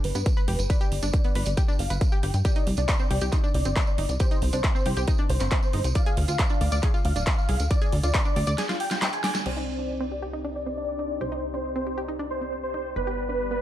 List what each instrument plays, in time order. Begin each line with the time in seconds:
0.04 analog synth bass G1, supersaw synth B4, open hi-hat
0.15 analog synth bass G2, synth pluck B3, closed hi-hat, tambourine
0.26 kick, closed hi-hat, tambourine
0.37 synth pluck B4, supersaw synth B4, tambourine
0.48 analog synth bass F1, synth pluck G4, open hi-hat
0.59 analog synth bass G1, closed hi-hat, tambourine
0.70 synth pluck B4, supersaw synth D5, kick, closed hi-hat, tambourine
0.81 synth pluck G4, closed hi-hat, tambourine
0.92 analog synth bass G1, open hi-hat
1.02 analog synth bass G1, synth pluck D4, supersaw synth D5, closed hi-hat, tambourine
1.13 kick, closed hi-hat, tambourine
1.24 synth pluck B3, supersaw synth D5, closed hi-hat, tambourine
1.35 analog synth bass G1, synth pluck B4, open hi-hat
1.46 analog synth bass G1, closed hi-hat, tambourine
1.57 synth pluck G4, kick, closed hi-hat, tambourine
1.68 synth pluck D4, tambourine
1.79 analog synth bass G1, supersaw synth F5, open hi-hat
1.90 analog synth bass G1, synth pluck B4, closed hi-hat, tambourine
2.01 kick, closed hi-hat, tambourine
2.12 synth pluck G4, supersaw synth G5, tambourine
2.23 analog synth bass G1, synth pluck G4, open hi-hat
2.34 analog synth bass G2, closed hi-hat, tambourine
2.45 synth pluck G4, supersaw synth D5, kick, closed hi-hat, tambourine
2.56 synth pluck D#4, closed hi-hat, tambourine
2.67 analog synth bass C2, open hi-hat
2.77 analog synth bass C2, synth pluck D4, supersaw synth D5, closed hi-hat, tambourine
2.88 kick, clap, closed hi-hat, tambourine
2.99 synth pluck C4, supersaw synth D5, tambourine
3.11 analog synth bass C2, synth pluck G4, open hi-hat
3.21 analog synth bass C2, synth pluck G4, closed hi-hat, tambourine
3.32 synth pluck D#4, kick, clap, closed hi-hat, tambourine
3.44 synth pluck D4, tambourine
3.54 analog synth bass C2, supersaw synth D5, open hi-hat
3.65 analog synth bass G1, synth pluck C4, closed hi-hat, tambourine
3.76 kick, clap, closed hi-hat, tambourine
3.87 supersaw synth D5, tambourine
3.98 analog synth bass G1, synth pluck D#4, open hi-hat
4.09 analog synth bass C2, closed hi-hat, tambourine
4.20 synth pluck G4, supersaw synth C5, kick, closed hi-hat, tambourine
4.31 synth pluck D#4, closed hi-hat, tambourine
4.42 analog synth bass C2, open hi-hat
4.53 analog synth bass C2, synth pluck D4, supersaw synth C5, closed hi-hat, tambourine
4.64 kick, clap, closed hi-hat, tambourine
4.75 synth pluck C4, supersaw synth C5, tambourine
4.86 analog synth bass C2, synth pluck G4, open hi-hat
4.97 analog synth bass C2, synth pluck G4, closed hi-hat, tambourine
5.08 synth pluck D#4, kick, closed hi-hat, tambourine
5.18 synth pluck D4, tambourine
5.30 analog synth bass C2, supersaw synth C5, open hi-hat
5.40 analog synth bass G1, synth pluck C4, clap, closed hi-hat, tambourine
5.51 kick, clap, closed hi-hat, tambourine
5.62 supersaw synth C5, tambourine
5.73 analog synth bass G1, synth pluck D#4, open hi-hat
5.84 analog synth bass C2, closed hi-hat, tambourine
5.95 synth pluck D5, supersaw synth F5, kick, closed hi-hat, tambourine
6.06 synth pluck G#4, closed hi-hat, tambourine
6.17 analog synth bass D2, open hi-hat
6.28 analog synth bass D2, synth pluck F4, supersaw synth F5, closed hi-hat, tambourine
6.39 kick, clap, closed hi-hat, tambourine
6.49 synth pluck D4, supersaw synth F5, tambourine
6.61 analog synth bass D2, synth pluck D5, open hi-hat
6.72 analog synth bass D2, synth pluck D5, closed hi-hat, tambourine
6.83 synth pluck G#4, kick, clap, closed hi-hat, tambourine
6.94 synth pluck F4, tambourine
7.05 analog synth bass D2, supersaw synth F5, open hi-hat
7.16 analog synth bass D1, synth pluck D4, closed hi-hat, tambourine
7.26 kick, clap, closed hi-hat, tambourine
7.38 supersaw synth F5, tambourine
7.49 analog synth bass C2, synth pluck G#4, open hi-hat
7.60 analog synth bass D2, closed hi-hat, tambourine
7.71 supersaw synth D5, synth pluck D5, kick, closed hi-hat, tambourine
7.81 synth pluck G#4, closed hi-hat, tambourine
7.92 analog synth bass D2, open hi-hat
8.03 analog synth bass D2, synth pluck F4, supersaw synth D5, closed hi-hat, tambourine
8.14 kick, clap, closed hi-hat, tambourine
8.25 synth pluck D4, supersaw synth D5, tambourine
8.36 analog synth bass D2, synth pluck D5, open hi-hat
8.47 analog synth bass D2, synth pluck D5, closed hi-hat, tambourine
8.58 synth pluck G#4, snare, closed hi-hat, tambourine
8.69 synth pluck F4, snare, closed hi-hat, tambourine
8.80 supersaw synth G5, open hi-hat
8.91 synth pluck F4, snare, closed hi-hat, tambourine
9.02 snare, clap, closed hi-hat, tambourine
9.13 supersaw synth G#5, closed hi-hat, tambourine
9.24 synth pluck D6, snare, open hi-hat
9.35 snare, closed hi-hat, tambourine
9.46 analog synth bass C2, supersaw synth C4 D#4 G4 D5, synth pluck G4, soft synth lead C5, crash
9.57 synth pluck D#4
9.79 synth pluck D4, supersaw synth D5
10.01 synth pluck C4, supersaw synth D5
10.12 synth pluck G4
10.22 synth pluck G4
10.33 synth pluck D#4
10.45 synth pluck D4
10.55 supersaw synth D5
10.66 synth pluck C4
10.77 soft synth lead D5
10.88 supersaw synth D5
10.99 synth pluck D#4
11.21 analog synth bass C2, synth pluck G4, supersaw synth C5
11.32 synth pluck D#4
11.54 synth pluck D4, supersaw synth C5
11.76 synth pluck C4, supersaw synth C5
11.87 synth pluck G4
11.98 synth pluck G4
12.08 synth pluck D#4
12.19 synth pluck D4
12.30 supersaw synth C5
12.41 synth pluck C4
12.63 supersaw synth C5
12.74 synth pluck D#4
12.96 analog synth bass G1, supersaw synth G3 B4, soft synth lead B4, synth pluck B4
13.07 synth pluck G4
13.29 synth pluck D4, supersaw synth B4
13.51 synth pluck B3, supersaw synth B4